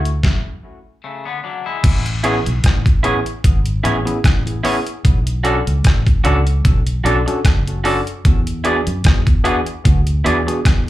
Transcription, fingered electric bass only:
0.00 0.20 D2 medium
1.84 2.40 A1 loud
2.47 2.63 B1 medium
2.64 3.20 A1 medium
3.45 3.81 G#1 medium
3.85 4.04 A1 medium
4.25 4.61 A1 medium
5.05 5.60 B1 loud
5.67 5.83 C#2 medium
5.85 6.21 A1 loud
6.25 6.61 C#2 medium
6.65 7.01 B1 medium
7.05 7.24 B1 loud
7.45 8.01 F#1 loud
8.25 8.81 E2 loud
8.87 9.03 F#2 medium
9.05 9.61 E2 medium
9.86 10.22 D2 medium
10.26 10.46 E2 loud
10.65 10.90 E2 medium

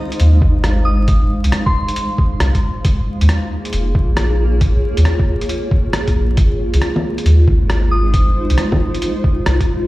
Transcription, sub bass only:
0.20 0.41 D#2 medium
0.42 1.29 G#1 medium
1.44 1.52 C2 medium
2.40 2.53 C2 medium
2.85 2.98 A#1 loud
3.21 3.28 D#2 medium
3.73 3.94 F1 medium
3.95 4.82 A#1 medium
4.97 5.04 D#2 medium
6.15 6.36 A#1 medium
6.38 6.51 G#1 loud
6.73 6.81 C2 medium
7.25 7.46 D#2 medium
7.48 8.35 G#1 medium
8.50 8.57 C2 medium
9.47 9.60 C2 medium

